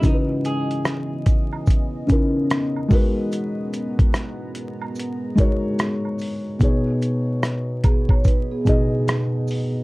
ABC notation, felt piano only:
X:1
M:4/4
L:1/8
Q:"Swing 16ths" 1/4=73
K:G#m
V:1 name="Felt piano"
[C,E,CDAB]3 z2 [C,CDEA]2 [G,DFAB]- | [G,DFAB]2 z3 [G,DFAc]2 z | [B,,B,DGc]3 z2 [B,,B,DGd]2 z |]